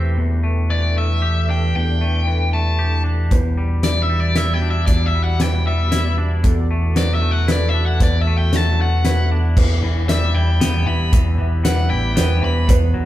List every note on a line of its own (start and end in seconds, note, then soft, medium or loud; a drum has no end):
0.00 0.15 E1 medium
0.00 0.18 E3 medium
0.00 6.39 E3 medium
0.00 0.43 A3 soft
0.00 0.18 C4 medium
0.00 0.15 E4 medium
0.00 0.46 G4 medium
0.00 6.39 G4 medium
0.00 3.27 B4 medium
0.00 0.15 C5 medium
0.18 1.72 E1 medium
0.18 1.49 E2 medium
0.18 3.28 D4 medium
0.18 3.28 A4 medium
0.43 0.95 A3 medium
0.70 2.01 E3 medium
0.70 0.95 D5 medium
0.96 2.00 A3 medium
0.96 1.50 E5 medium
1.22 2.57 G4 medium
1.49 3.04 D4 medium
1.49 1.75 G5 medium
1.75 3.28 E1 medium
1.75 3.06 E2 medium
1.75 2.53 G5 medium
2.01 2.53 A3 medium
2.27 3.32 E3 medium
2.53 3.32 A3 medium
2.53 3.02 A5 medium
2.79 4.35 G4 medium
3.04 3.34 D4 medium
3.31 4.85 E1 medium
3.31 4.62 E2 medium
3.31 9.53 B3 medium
3.31 6.41 F#4 medium
3.31 3.84 B4 medium
3.31 9.53 D5 medium
3.31 kick medium
3.31 closed hi-hat soft
3.57 4.08 G3 medium
3.83 5.14 E3 medium
3.83 4.02 D5 medium
3.83 4.34 D5 medium
3.83 snare medium
3.83 closed hi-hat soft
4.02 4.20 E5 medium
4.09 5.14 G3 medium
4.20 4.37 D5 medium
4.35 5.66 E4 medium
4.35 4.87 D5 medium
4.35 4.53 E5 medium
4.35 snare medium
4.35 closed hi-hat medium
4.53 4.70 G5 medium
4.62 5.95 D4 medium
4.70 4.86 E5 medium
4.86 6.41 E1 medium
4.86 6.19 E2 medium
4.86 5.06 D5 medium
4.86 5.40 D5 medium
4.86 kick medium
4.86 closed hi-hat medium
5.06 5.23 E5 medium
5.15 5.65 G3 medium
5.24 5.41 F#5 medium
5.40 6.44 E3 medium
5.40 5.92 B4 medium
5.40 5.67 G5 medium
5.40 snare medium
5.40 closed hi-hat medium
5.66 6.44 G3 medium
5.66 6.15 E5 medium
5.92 6.44 E4 medium
5.92 6.44 D5 medium
5.92 snare medium
5.92 closed hi-hat medium
6.18 6.46 D4 medium
6.43 7.97 E1 medium
6.43 7.74 E2 medium
6.43 9.54 E3 medium
6.43 9.53 F#4 medium
6.43 9.53 A4 medium
6.43 6.96 A4 medium
6.43 kick medium
6.43 closed hi-hat soft
6.71 7.20 A3 medium
6.96 8.27 F#3 medium
6.96 7.47 B4 medium
6.96 7.14 D5 medium
6.96 snare medium
6.96 closed hi-hat soft
7.14 7.31 E5 medium
7.21 8.26 A3 medium
7.31 7.49 F#5 medium
7.48 8.79 E4 medium
7.48 8.00 B4 medium
7.48 7.69 D5 medium
7.48 snare medium
7.48 closed hi-hat soft
7.69 7.85 E5 medium
7.74 9.05 D4 medium
7.86 8.01 F#5 medium
8.00 9.54 E1 medium
8.00 9.31 E2 medium
8.00 8.53 B4 medium
8.00 8.20 D5 medium
8.00 kick medium
8.00 closed hi-hat soft
8.21 8.37 E5 medium
8.27 8.78 A3 medium
8.38 8.56 G5 medium
8.53 9.57 F#3 medium
8.53 9.05 A4 medium
8.53 8.81 A5 medium
8.53 snare medium
8.53 closed hi-hat soft
8.79 9.57 A3 medium
8.79 9.29 F#5 medium
9.05 9.57 E4 medium
9.05 9.57 B4 medium
9.05 snare medium
9.05 closed hi-hat medium
9.32 9.57 D4 medium
9.57 9.81 E1 medium
9.57 10.88 E2 medium
9.57 12.67 E3 medium
9.57 13.05 B3 medium
9.57 12.66 G4 medium
9.57 10.10 B4 medium
9.57 12.66 E5 medium
9.57 12.66 B5 medium
9.57 kick medium
9.57 crash loud
9.83 10.08 E1 medium
9.83 10.86 E3 medium
10.09 10.34 E1 medium
10.09 11.40 G3 medium
10.09 10.61 D5 medium
10.09 10.36 E5 medium
10.09 snare medium
10.09 closed hi-hat medium
10.34 10.60 E2 medium
10.34 11.65 E4 medium
10.34 10.87 G5 medium
10.60 10.86 E1 medium
10.60 12.15 B3 medium
10.60 snare medium
10.60 closed hi-hat medium
10.87 11.12 E1 medium
10.87 11.37 E3 medium
10.87 11.11 B5 medium
11.13 11.38 E1 medium
11.13 12.43 E2 medium
11.13 kick loud
11.13 closed hi-hat medium
11.38 11.64 E1 medium
11.38 12.40 E3 medium
11.38 11.66 E5 medium
11.64 11.90 E1 medium
11.64 12.68 G3 medium
11.64 12.16 B4 medium
11.64 11.90 F#5 medium
11.64 snare medium
11.64 closed hi-hat medium
11.90 12.16 A1 medium
11.90 12.69 E4 medium
11.90 12.44 G5 medium
12.16 12.42 E1 medium
12.16 13.05 B3 medium
12.16 12.42 B4 medium
12.16 snare medium
12.16 closed hi-hat medium
12.42 12.68 E1 medium
12.42 12.68 E3 medium
12.42 12.69 B4 medium
12.42 12.68 B5 medium
12.67 12.93 E1 medium
12.67 13.05 E2 medium
12.67 13.05 E3 medium
12.67 13.05 F#4 medium
12.67 13.05 B4 medium
12.67 13.05 D5 medium
12.67 13.05 F#5 medium
12.67 kick loud
12.67 closed hi-hat medium
12.94 13.05 E1 medium
12.94 13.05 F#3 medium